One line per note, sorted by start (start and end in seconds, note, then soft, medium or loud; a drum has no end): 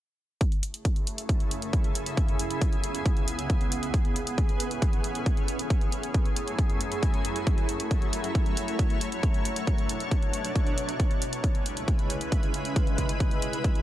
0.41 2.16 F#2 medium
0.41 3.90 C#3 medium
0.41 2.16 A3 medium
0.41 3.90 E4 medium
0.41 5.66 G#4 medium
0.41 kick loud
0.41 closed hi-hat medium
0.52 closed hi-hat soft
0.63 closed hi-hat medium
0.74 closed hi-hat medium
0.85 kick loud
0.85 closed hi-hat medium
0.96 closed hi-hat soft
1.07 closed hi-hat medium
1.18 closed hi-hat soft
1.29 kick loud
1.29 closed hi-hat medium
1.40 closed hi-hat soft
1.51 closed hi-hat medium
1.62 closed hi-hat soft
1.73 kick loud
1.73 closed hi-hat soft
1.84 closed hi-hat soft
1.95 closed hi-hat medium
2.06 closed hi-hat soft
2.17 3.92 C#2 medium
2.17 5.67 B3 medium
2.17 kick loud
2.17 closed hi-hat medium
2.28 closed hi-hat soft
2.39 closed hi-hat medium
2.51 closed hi-hat soft
2.61 kick loud
2.61 closed hi-hat soft
2.73 closed hi-hat soft
2.84 closed hi-hat medium
2.95 closed hi-hat soft
3.06 kick loud
3.06 closed hi-hat soft
3.17 closed hi-hat soft
3.28 closed hi-hat medium
3.39 closed hi-hat soft
3.50 kick loud
3.50 closed hi-hat soft
3.61 closed hi-hat soft
3.72 closed hi-hat medium
3.83 closed hi-hat soft
3.94 5.69 A2 medium
3.94 5.69 E3 medium
3.94 5.69 C#4 medium
3.94 kick loud
3.94 closed hi-hat soft
4.05 closed hi-hat soft
4.16 closed hi-hat medium
4.27 closed hi-hat soft
4.38 kick loud
4.38 closed hi-hat soft
4.49 closed hi-hat soft
4.60 closed hi-hat medium
4.71 closed hi-hat soft
4.82 kick loud
4.82 closed hi-hat soft
4.93 closed hi-hat soft
5.04 closed hi-hat medium
5.15 closed hi-hat soft
5.26 kick loud
5.26 closed hi-hat soft
5.37 closed hi-hat soft
5.48 closed hi-hat medium
5.59 closed hi-hat soft
5.70 9.20 F#2 medium
5.70 10.96 F#3 medium
5.70 7.45 A3 medium
5.70 7.45 E4 medium
5.70 7.45 G#4 medium
5.70 kick loud
5.70 closed hi-hat soft
5.81 closed hi-hat soft
5.92 closed hi-hat medium
6.03 closed hi-hat soft
6.14 kick loud
6.14 closed hi-hat soft
6.25 closed hi-hat soft
6.36 closed hi-hat medium
6.48 closed hi-hat soft
6.59 kick loud
6.59 closed hi-hat soft
6.70 closed hi-hat soft
6.81 closed hi-hat medium
6.92 closed hi-hat soft
7.03 kick loud
7.03 closed hi-hat soft
7.14 closed hi-hat soft
7.25 closed hi-hat medium
7.36 closed hi-hat soft
7.47 10.96 A3 medium
7.47 9.21 E4 medium
7.47 10.96 C#5 medium
7.47 kick loud
7.47 closed hi-hat soft
7.58 closed hi-hat soft
7.69 closed hi-hat medium
7.80 closed hi-hat soft
7.91 kick loud
7.91 closed hi-hat soft
8.02 closed hi-hat soft
8.13 closed hi-hat medium
8.24 closed hi-hat soft
8.35 kick loud
8.35 closed hi-hat soft
8.46 closed hi-hat soft
8.57 closed hi-hat medium
8.68 closed hi-hat soft
8.79 kick loud
8.79 closed hi-hat soft
8.90 closed hi-hat soft
9.01 closed hi-hat medium
9.12 closed hi-hat soft
9.23 10.98 B2 medium
9.23 10.98 D4 medium
9.23 kick loud
9.23 closed hi-hat soft
9.34 closed hi-hat soft
9.45 closed hi-hat medium
9.56 closed hi-hat soft
9.67 kick loud
9.67 closed hi-hat soft
9.78 closed hi-hat soft
9.89 closed hi-hat medium
10.00 closed hi-hat soft
10.11 kick loud
10.11 closed hi-hat soft
10.22 closed hi-hat soft
10.33 closed hi-hat medium
10.45 closed hi-hat soft
10.56 kick loud
10.56 closed hi-hat soft
10.67 closed hi-hat soft
10.78 closed hi-hat medium
10.89 closed hi-hat soft
11.00 12.74 C#2 medium
11.00 12.74 C#3 medium
11.00 13.82 G#3 medium
11.00 13.82 E4 medium
11.00 13.82 B4 medium
11.00 kick loud
11.00 closed hi-hat medium
11.11 closed hi-hat soft
11.22 closed hi-hat medium
11.33 closed hi-hat medium
11.44 kick loud
11.44 closed hi-hat soft
11.55 closed hi-hat soft
11.66 closed hi-hat medium
11.77 closed hi-hat soft
11.88 kick loud
11.88 closed hi-hat soft
11.99 closed hi-hat soft
12.10 closed hi-hat medium
12.21 closed hi-hat medium
12.32 kick loud
12.32 closed hi-hat medium
12.43 closed hi-hat soft
12.54 closed hi-hat medium
12.65 closed hi-hat soft
12.76 13.82 E2 medium
12.76 13.82 B2 medium
12.76 kick loud
12.76 closed hi-hat soft
12.87 closed hi-hat soft
12.98 kick medium
12.98 closed hi-hat medium
13.09 closed hi-hat medium
13.20 kick loud
13.20 closed hi-hat medium
13.31 closed hi-hat soft
13.42 closed hi-hat medium
13.53 closed hi-hat soft
13.64 kick loud
13.64 closed hi-hat medium
13.75 closed hi-hat soft